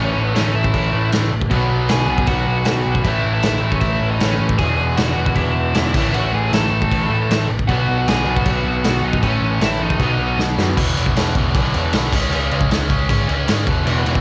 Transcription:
Already playing: picked electric bass A1, distorted electric guitar A2 E3 A3, lead electric guitar C#5
0.00 lead electric guitar C#4
0.17 picked electric bass A1
0.23 lead electric guitar B3 B4
0.34 picked electric bass A1, distorted electric guitar A2 E3 A3, lead electric guitar C#4 C#5, snare, crash
0.55 picked electric bass A1, lead electric guitar E4 E5
0.64 kick
0.74 picked electric bass A1, kick, crash
0.92 picked electric bass A1, distorted electric guitar A2 E3 A3
1.12 picked electric bass A1, snare, crash
1.33 picked electric bass A1
1.42 kick
1.49 picked electric bass B1, distorted electric guitar B2 F#3 B3, kick, crash
1.54 distorted electric guitar B3
1.71 picked electric bass B1
1.89 picked electric bass B1, lead electric guitar G#4 G#5, snare, crash
2.07 picked electric bass B1, distorted electric guitar F#3 B3
2.11 distorted electric guitar B2
2.18 kick
2.27 picked electric bass B1, lead electric guitar F#4 F#5, kick, crash
2.47 picked electric bass B1
2.65 picked electric bass B1, distorted electric guitar B2 F#3 B3, snare, crash
2.86 picked electric bass B1
2.95 kick
3.04 picked electric bass A1, distorted electric guitar A2 E3 A3, lead electric guitar E4 E5, kick, crash
3.08 distorted electric guitar A3
3.25 picked electric bass A1
3.34 lead electric guitar E4 E5
3.42 picked electric bass A1, snare, crash
3.60 picked electric bass A1, distorted electric guitar A2 E3 A3
3.71 lead electric guitar C#4 C#5, kick
3.81 picked electric bass A1, lead electric guitar E4 E5, kick, crash
4.01 picked electric bass A1
4.11 lead electric guitar D#4 D#5
4.19 picked electric bass A1, distorted electric guitar A2 E3 A3, lead electric guitar C#4 C#5, snare, crash
4.40 picked electric bass A1
4.49 kick
4.58 picked electric bass E1, distorted electric guitar E2 B2 E3, lead electric guitar G#4 G#5, kick, crash
4.62 distorted electric guitar E3
4.77 picked electric bass E1, lead electric guitar G#4 G#5
4.96 picked electric bass E1, lead electric guitar F#4 F#5, snare, crash
5.16 picked electric bass E1, distorted electric guitar E2 B2 E3
5.26 kick
5.35 picked electric bass E1, lead electric guitar E4 E5, kick, crash
5.56 picked electric bass E1
5.74 picked electric bass E1, distorted electric guitar E2 B2 E3, snare, crash
5.93 picked electric bass A1, distorted electric guitar A2 E3 A3, kick, crash
5.97 distorted electric guitar A3
6.14 picked electric bass A1, lead electric guitar F#4 F#5, crash
6.33 picked electric bass A1, lead electric guitar G#4 G#5
6.51 picked electric bass A1, distorted electric guitar A2 E3, lead electric guitar A4 A5, snare, crash
6.55 distorted electric guitar A3
6.71 picked electric bass A1
6.82 kick
6.91 picked electric bass A1, kick, crash
7.10 picked electric bass A1, distorted electric guitar A2 E3 A3
7.29 picked electric bass A1, snare, crash
7.50 picked electric bass A1
7.59 kick
7.68 picked electric bass B1, distorted electric guitar B2 F#3, lead electric guitar F#4 F#5, kick, crash
7.72 distorted electric guitar B3
7.89 picked electric bass B1
7.98 lead electric guitar F#4 F#5
8.07 picked electric bass B1, lead electric guitar G#4 G#5, snare, crash
8.27 picked electric bass B1, distorted electric guitar B2 F#3 B3
8.36 lead electric guitar F#4 F#5, kick
8.45 picked electric bass B1, lead electric guitar F#4 F#5, kick, crash
8.65 picked electric bass B1
8.84 picked electric bass B1, distorted electric guitar B2 F#3 B3, snare, crash
9.03 picked electric bass B1, lead electric guitar D#4 D#5
9.13 kick
9.21 picked electric bass A1, distorted electric guitar A2 E3 A3, lead electric guitar C#4 C#5, kick, crash
9.26 distorted electric guitar A3
9.41 picked electric bass A1
9.61 picked electric bass A1, lead electric guitar E4 E5, snare, crash
9.80 picked electric bass A1, distorted electric guitar A2 E3 A3, lead electric guitar D#4 D#5
9.90 kick
9.98 picked electric bass B1, distorted electric guitar B2 F#3 B3, kick, crash
10.03 distorted electric guitar B3
10.19 picked electric bass B1
10.38 picked electric bass B1, snare
10.56 picked electric bass F#2, distorted electric guitar B2 F#3 B3, snare
10.77 picked electric bass E1, distorted electric guitar E2 B2 E3, kick, crash
10.96 picked electric bass E1, distorted electric guitar E2 B2 E3, crash
11.06 kick
11.16 picked electric bass E1, distorted electric guitar E2 B2 E3, snare, crash
11.35 picked electric bass E1, distorted electric guitar E2 B2 E3, kick, crash
11.55 picked electric bass B1, distorted electric guitar E2 B2 E3, kick, crash
11.74 picked electric bass E1, distorted electric guitar E2 B2 E3, crash
11.93 picked electric bass B1, distorted electric guitar E2 B2 E3, snare, crash
12.13 picked electric bass C#2, distorted electric guitar C#3 G#3 C#4, kick, crash
12.31 picked electric bass C#2, distorted electric guitar C#3 G#3 C#4, crash
12.51 picked electric bass C#2, distorted electric guitar C#3 G#3 C#4, crash
12.61 kick
12.70 picked electric bass C#2, distorted electric guitar C#3 G#3 C#4, snare, crash
12.89 picked electric bass C#2, distorted electric guitar C#3 G#3 C#4, kick, crash
13.08 picked electric bass G#2, distorted electric guitar C#3 G#3 C#4, kick, crash
13.28 picked electric bass C#2, distorted electric guitar C#3 G#3 C#4, crash
13.48 picked electric bass G#2, distorted electric guitar C#3 G#3 C#4, snare, crash
13.67 picked electric bass E1, distorted electric guitar E2 B2 E3, kick, crash
13.85 picked electric bass E1, distorted electric guitar E2 B2 E3, crash
14.04 picked electric bass E1, distorted electric guitar E2 B2 E3, crash
14.15 kick

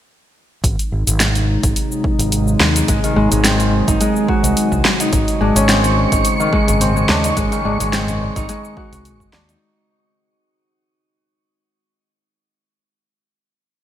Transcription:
0.64 fretless electric bass G#1, ambient pad C3 F#3 G#3 D#4, kick, open hi-hat, cabasa
0.79 open hi-hat, cabasa
0.92 fretless electric bass G#1
1.07 fretless electric bass G#1, open hi-hat, cabasa
1.20 snare, open hi-hat, cabasa
1.35 open hi-hat, cabasa
1.63 fretless electric bass G#1, kick, open hi-hat, cabasa
1.76 open hi-hat, cabasa
1.92 cabasa
2.04 kick
2.19 fretless electric bass G#1, open hi-hat, cabasa
2.32 open hi-hat, cabasa
2.48 cabasa
2.60 fretless electric bass D#2, snare
2.76 open hi-hat, cabasa
2.88 fretless electric bass G#1, harp G#3, kick, open hi-hat, cabasa
3.04 harp D#3, open hi-hat, cabasa
3.16 fretless electric bass G#1, harp G#3
3.31 fretless electric bass G#1, harp G#3, open hi-hat, cabasa
3.44 harp C4, snare, open hi-hat, cabasa
3.60 open hi-hat, cabasa
3.88 fretless electric bass G#1, harp D#4, kick, open hi-hat, cabasa
4.01 harp G#3, open hi-hat, cabasa
4.16 cabasa
4.28 harp F#4, kick
4.44 fretless electric bass C2, open hi-hat, cabasa
4.57 open hi-hat, cabasa
4.72 fretless electric bass C2, kick, cabasa
4.85 snare
5.00 harp D#4, open hi-hat, cabasa
5.13 fretless electric bass G#1, ambient pad C#3, synth texture C#6, kick, open hi-hat, cabasa
5.28 open hi-hat, tabla tin, cabasa
5.41 fretless electric bass G#1, harp G#3, tabla na
5.55 fretless electric bass G#1, harp C#4, open hi-hat, cabasa
5.69 harp C4, snare, open hi-hat, cabasa
5.84 open hi-hat, cabasa
5.97 tabla tin
6.12 fretless electric bass G#1, harp D#4, kick, open hi-hat, cabasa
6.25 open hi-hat, cabasa
6.40 harp D#3, cabasa
6.53 harp G#3, kick
6.68 fretless electric bass G#1, open hi-hat, tabla ge, cabasa
6.80 harp C4, open hi-hat, cabasa
6.96 harp G#3, cabasa
7.09 fretless electric bass D#2, harp C#4, snare, tabla na
7.24 harp D#4, open hi-hat, tabla tin, cabasa
7.36 fretless electric bass G#1, harp G#3, kick, open hi-hat, tabla na, cabasa
7.52 harp D#3, open hi-hat, cabasa
7.65 fretless electric bass G#1, harp G#3, tabla na
7.80 fretless electric bass G#1, harp G#3, open hi-hat, cabasa
7.93 harp C4, snare, open hi-hat, cabasa
8.08 open hi-hat, tabla ge, cabasa
8.21 tabla tin
8.36 fretless electric bass G#1, harp D#4, kick, open hi-hat, cabasa
8.49 harp G#3, open hi-hat, cabasa
8.65 cabasa
8.77 harp F#4, kick
8.93 fretless electric bass C2, open hi-hat, cabasa
9.05 open hi-hat, cabasa
9.20 fretless electric bass F#1, kick, cabasa
9.33 fretless electric bass D#2, snare, tabla na
9.48 harp D#4, open hi-hat, tabla tin, cabasa

